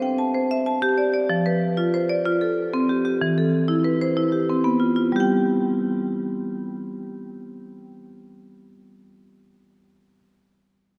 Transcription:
marimba
Already playing: C5
0.02 G5
0.18 A5
0.34 C5
0.51 E5
0.66 A5
0.82 G4
0.98 D5
1.14 D5
1.30 F3
1.46 B4
1.77 F4
1.94 C5
2.09 D5
2.25 F4
2.41 A4
2.74 C4
2.89 G4
3.05 G4
3.21 E3
3.38 A4
3.68 E4
3.84 B4
4.01 C5
4.17 E4
4.32 G4
4.49 C4
4.64 B3
4.80 F4
4.96 F4
5.12 G3 G4
5.20 G5

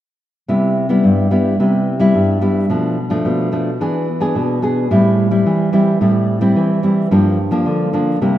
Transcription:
nylon-string guitar
0.48 C3 G3 B3 E4
0.89 G3 B3 E4
1.04 G2
1.31 G3 B3 E4
1.60 C3 G3 B3 E4
2.00 G3 B3 E4
2.15 G2
2.41 G3 B3 E4
2.70 B2 F3 A3 D4
3.10 F3 A3 D4
3.25 B2
3.52 F3 A3 D4
3.81 E3 B3 D4 G#4
4.21 B3 D4 G#4
4.35 B2
4.62 B3 D4 G#4
4.91 A2 G3 C4 E4
5.31 G3 C4 E4
5.46 E3
5.73 G3 C4 E4
6.01 A2 G3 C4 E4
6.41 G3 C4 E4
6.56 E3
6.83 G3 C4 E4
7.11 G2 F3 A#3 D4
7.51 F3 A#3 D4
7.66 D3
7.93 F3 A#3 D4
8.21 C3 G3 A#3 E4

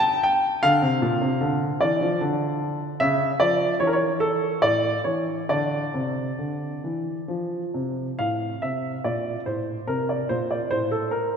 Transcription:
grand piano
Already playing: C#3 A5
0.23 G5
0.63 D3 F5
0.82 C3
1.02 A#2
1.22 C3
1.41 D3
1.81 E3 D5
2.01 F3
2.21 D3
3.00 C#3 E5
3.40 F3 D5
3.80 E3 C#5
3.87 A#4
3.93 C#5
4.20 A4
4.62 A2 D5
5.04 E3 C#5
5.49 D3 D5
5.94 C3
6.39 D3
6.84 E3
7.28 F3
7.74 C3
8.19 A2 F5
8.62 C3 E5
9.04 A#2 D5
9.46 A2 C5
9.87 C3 A#4
10.09 D5
10.29 A#2 C5
10.51 D5
10.71 A2 C5
10.91 A4
11.11 A#4

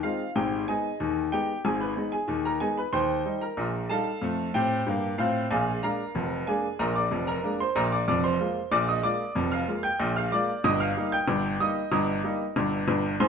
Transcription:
grand piano
0.03 G#3 C4 D#4 F4 F5
0.36 G#1 G#2 G4 G5
0.68 G#3 B3 D#4 G#4 D#5 G#5
1.00 D#2 D#3
1.32 G#3 B3 D#4 G4 G5
1.65 G#1 G#2 G#4 G#5
1.81 B4 B5
1.96 G#3 B3 D#4
2.12 G#4 G#5
2.28 D#2 D#3
2.45 A#4 A#5
2.60 G#3 B3 D#4 G#4 G#5
2.77 B4 B5
2.93 D#2 D#3 C5 G5 C6
3.25 G3 D#4
3.41 A#4 A#5
3.57 A#1 A#2
3.90 G3 D#4 A4 F5 A5
4.21 F2 A3
4.54 A2 C4 G4 G5
4.86 G2 A#3
5.18 A2 C4 F4 F5
5.51 A#1 A#2 G#4 F5 G#5
5.83 G#3 A#3 D4 A#4 F5 A#5
6.15 F1 F2
6.47 G#3 A#3 D4 G#4 G#5
6.79 A#1 A#2 A#4 A#5
6.95 D5 D6
7.11 F1 F2
7.27 A#4 A#5
7.44 G#3 A#3 D4
7.60 C5 C6
7.75 A#1 A#2 A#4 A#5
7.92 D5 D6
8.08 F1 F2 D5 D6
8.24 C5 C6
8.40 G#3 A#3 F4
8.71 A#1 A#2 D5 D6
8.88 D#5 D#6
9.03 G#3 A#3 F4 D5 D6
9.35 F1 F2
9.52 F5 F6
9.68 G#3 A#3 F4
9.83 G5 G6
9.99 A#1 A#2
10.16 F5 F6
10.32 G#3 A#3 F4 D5 D6
10.64 G1 G2 D#5 D#6
10.80 F5 F6
10.96 G3 A#3 D#4
11.12 G5 G6
11.28 G1 G2
11.60 G3 A#3 D#4 D#5 D#6
11.92 G1 G2 D#5 A#5 D#6
12.24 G3 A#3 D#4
12.56 G1 G2
12.88 G1 G2
13.20 G#1 G#2 C5 G#5 C6

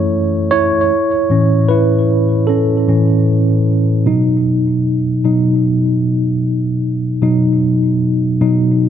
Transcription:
tine electric piano
Already playing: F#2 E3 A3 C#4 E4 A4 C#5
0.51 E4 C#5
1.30 A2 E3 C#4
1.69 E4 B4
2.47 C#4 A4
2.88 A2 E3 C#4
4.06 B2 F#3 D#4
5.24 B2 F#3 D#4
7.22 B2 F#3 D#4
8.41 B2 F#3 D#4

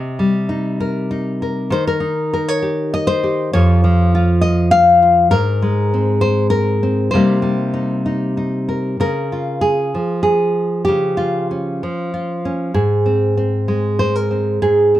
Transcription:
nylon-string guitar
Already playing: C3 D#5
0.19 G3
0.49 D#4
0.80 A#4
1.11 D#4
1.42 A#4
1.70 D#3 C5
1.87 A#4
2.00 D#4
2.34 A#4
2.48 C#5
2.62 G4
2.94 D#5
3.07 C5
3.23 G4
3.53 F2 F3 F4 C#5
3.84 F3
4.15 F4
4.41 D#5
4.71 F5
5.02 F4
5.31 G#2 A#4
5.62 G#3
5.94 C4
6.21 C5
6.50 A#4
6.83 C4
7.11 C3 G3 C5
7.15 A#3 D#4
7.42 G3
7.74 D#4
8.06 D#4
8.37 D#4
8.69 A#4
9.00 C#3 A#4
9.32 F4
9.61 G#4
9.95 F3
10.23 G#4
10.85 C#3 G4
11.17 F4
11.51 C#4
11.83 F3
12.14 F4
12.45 C#4
12.74 G#2 G#4
13.06 C4
13.37 C4
13.68 G#3
13.99 C5
14.15 A#4
14.31 C4
14.62 G#2 G#4
14.95 C4

